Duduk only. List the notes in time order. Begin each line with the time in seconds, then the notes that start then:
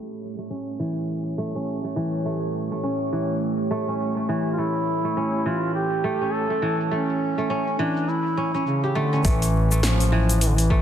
4.53 F4
4.58 E4
5.46 F4
5.75 G4
6.33 A4
6.92 C#4
7.79 D4
8.08 E4
8.66 C#3
8.95 D3
9.25 E3
9.83 F3
10.41 E3
10.50 D3
10.58 E3